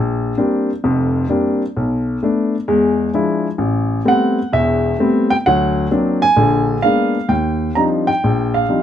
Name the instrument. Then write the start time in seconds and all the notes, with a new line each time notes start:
grand piano
Already playing: A#1
0.37 G3 A#3 C4 D4
0.84 F1 F2
1.29 G3 A#3 C4 D4
1.76 B1
2.23 A3 B3 D4
2.68 E2 G#3
3.14 F3 G#3 D4 E4
3.58 A1
4.05 G3 A3 B3 C4 F#5
4.52 E1 E2 E5
4.99 G3 A3 B3 C4
5.30 G5
5.46 D2 F#3 F#5
5.91 F#3 A#3 C4 D4
6.22 G#5
6.36 A#1 D3
6.82 G#3 A#3 B3 D4 F5
7.28 D#2 G5
7.75 F3 G3 C4 D4 D#4 A#5
8.07 G5
8.24 A#1
8.54 F5
8.69 F3 G3 C4 D4 D#4